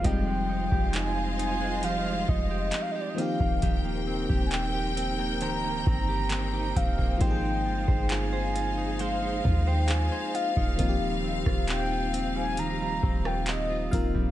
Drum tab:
HH |x---x-x-x---x-x-|x---x-x-x---x-x-|x---x-x-x---x-x-|x---x-x-x---x-x-|
CP |----x-------x---|----x-------x---|----x-------x---|----x-------x---|
SD |----------------|----------------|----------------|---r-------r----|
BD |o--o------o----o|o--o------o---oo|o--o------o----o|o--o------o---oo|